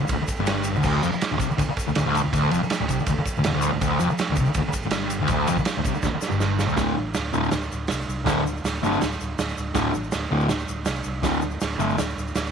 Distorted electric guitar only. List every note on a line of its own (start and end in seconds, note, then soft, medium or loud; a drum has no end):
0.03 muted distorted electric guitar stroke medium
0.12 0.20 D2 medium
0.21 muted distorted electric guitar stroke medium
0.40 0.75 G2 loud
0.77 0.84 D2 loud
0.85 1.03 D2 loud
1.03 1.11 F2 loud
1.12 muted distorted electric guitar stroke medium
1.32 1.38 D2 medium
1.39 1.48 C3 loud
1.50 muted distorted electric guitar stroke medium
1.57 1.67 D2 medium
1.69 muted distorted electric guitar stroke medium
1.87 1.95 D2 medium
1.96 2.05 D2 medium
2.06 2.22 D2 loud
2.24 2.32 D2 medium
2.33 2.51 D2 loud
2.52 2.60 F2 loud
2.63 muted distorted electric guitar stroke medium
2.81 2.89 D2 medium
2.91 2.98 C3 loud
3.01 muted distorted electric guitar stroke medium
3.09 3.17 D2 medium
3.19 muted distorted electric guitar stroke medium
3.38 3.45 D2 medium
3.47 3.52 D2 medium
3.54 3.71 D2 loud
3.73 3.80 D2 medium
3.82 3.99 D2 loud
4.00 4.09 F2 loud
4.11 muted distorted electric guitar stroke medium
4.32 4.39 D2 medium
4.40 4.47 C3 loud
4.48 muted distorted electric guitar stroke medium
4.57 4.66 D2 medium
4.68 muted distorted electric guitar stroke medium
4.86 5.20 G2 loud
5.21 5.29 D2 loud
5.31 5.48 D2 loud
5.49 5.57 F2 loud
5.59 muted distorted electric guitar stroke medium
5.78 5.86 D2 medium
5.87 5.94 C3 loud
5.95 muted distorted electric guitar stroke medium
6.05 6.13 D2 medium
6.14 muted distorted electric guitar stroke medium
6.29 6.67 G2 loud
6.68 6.76 D2 loud
6.77 6.92 D2 medium
6.77 6.93 A2 medium
6.77 6.93 D3 loud
7.33 7.48 D2 medium
7.33 7.49 A2 loud
7.33 7.49 D3 loud
8.25 8.40 D2 medium
8.25 8.41 A2 medium
8.25 8.41 D3 loud
8.83 8.97 D2 loud
8.83 8.97 A2 medium
8.83 8.98 D3 loud
9.75 9.90 D2 loud
9.75 9.90 A2 loud
9.75 9.90 D3 medium
10.31 10.46 D2 medium
10.31 10.46 A2 medium
10.31 10.46 D3 medium
11.23 11.38 D2 medium
11.23 11.39 A2 loud
11.23 11.39 D3 loud
11.79 11.94 D2 medium
11.79 11.94 A2 loud
11.79 11.94 D3 loud